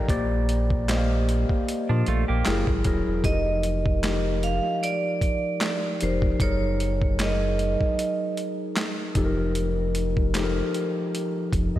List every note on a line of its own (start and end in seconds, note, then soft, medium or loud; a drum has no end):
0.00 0.10 A4 medium
0.00 0.29 A#5 medium
0.09 1.45 A#1 loud
0.09 0.75 A#3 medium
0.09 0.75 G4 medium
0.09 0.75 C5 medium
0.09 0.75 D5 medium
0.09 kick loud
0.09 closed hi-hat medium
0.49 closed hi-hat medium
0.70 kick medium
0.88 2.18 A#3 medium
0.88 2.18 G4 medium
0.88 2.19 C5 medium
0.88 0.96 D#5 medium
0.88 snare medium
0.88 clap medium
0.88 closed hi-hat medium
0.97 2.23 F5 medium
1.29 closed hi-hat soft
1.49 kick medium
1.69 closed hi-hat medium
1.89 2.03 A#2 medium
1.89 2.06 F3 medium
1.89 2.06 D4 medium
2.06 2.24 A#1 medium
2.06 2.28 A3 medium
2.06 2.27 F4 medium
2.06 closed hi-hat soft
2.28 2.43 A#1 medium
2.28 2.66 A#3 medium
2.28 2.65 G4 medium
2.46 2.64 F#1 medium
2.46 2.79 F#3 medium
2.46 2.79 E4 medium
2.46 2.79 G#4 medium
2.46 2.80 A#4 medium
2.46 snare loud
2.46 clap medium
2.46 closed hi-hat medium
2.67 2.82 G#1 medium
2.67 kick medium
2.84 3.03 D#1 medium
2.84 3.18 F#3 medium
2.84 3.18 E4 medium
2.84 3.18 G#4 medium
2.84 3.19 A#4 medium
2.84 kick medium
2.84 closed hi-hat medium
3.08 3.22 E1 medium
3.24 4.60 F1 loud
3.24 3.90 F3 medium
3.24 3.90 D#4 medium
3.24 3.91 G4 medium
3.24 3.32 A4 medium
3.24 4.46 D#5 medium
3.24 kick loud
3.24 closed hi-hat medium
3.32 3.94 A#4 medium
3.63 closed hi-hat medium
3.86 kick medium
4.03 5.33 F3 medium
4.03 5.33 D#4 medium
4.03 5.34 G4 medium
4.03 5.34 A#4 medium
4.03 snare loud
4.03 clap medium
4.03 closed hi-hat medium
4.43 4.84 F5 medium
4.43 closed hi-hat soft
4.83 6.04 D5 medium
4.83 closed hi-hat medium
5.21 kick medium
5.21 closed hi-hat soft
5.61 snare loud
5.61 clap medium
5.61 closed hi-hat medium
6.01 6.34 F1 medium
6.01 6.34 F3 medium
6.01 6.34 D#4 medium
6.01 6.34 G4 soft
6.01 6.35 A#4 medium
6.01 6.42 C5 medium
6.01 closed hi-hat medium
6.22 kick medium
6.40 7.76 F#1 loud
6.40 7.07 F#3 medium
6.40 7.07 D#4 medium
6.40 7.07 G#4 medium
6.40 7.08 A#4 medium
6.40 7.22 C#5 medium
6.40 kick loud
6.40 closed hi-hat medium
6.80 closed hi-hat medium
7.02 kick medium
7.19 8.50 F#3 medium
7.19 8.50 D#4 medium
7.19 8.50 G#4 medium
7.19 8.51 A#4 medium
7.19 8.34 D#5 medium
7.19 snare medium
7.19 clap medium
7.19 closed hi-hat medium
7.59 closed hi-hat soft
7.81 kick medium
7.99 closed hi-hat medium
8.37 closed hi-hat soft
8.77 snare loud
8.77 clap medium
8.77 closed hi-hat medium
9.15 10.62 F1 medium
9.15 10.15 F3 medium
9.15 10.15 D#4 medium
9.15 10.16 G4 medium
9.15 9.24 A4 medium
9.15 kick medium
9.15 closed hi-hat medium
9.24 10.19 A#4 medium
9.55 closed hi-hat medium
9.95 closed hi-hat medium
10.17 kick medium
10.35 11.65 F3 medium
10.35 11.54 D#4 medium
10.35 11.54 G4 medium
10.35 10.43 A4 medium
10.35 snare medium
10.35 clap medium
10.35 closed hi-hat medium
10.44 11.58 A#4 medium
10.74 closed hi-hat soft
11.15 closed hi-hat medium
11.53 11.71 F1 medium
11.53 kick medium
11.53 closed hi-hat medium
11.76 11.79 F2 medium
11.76 11.79 D#5 medium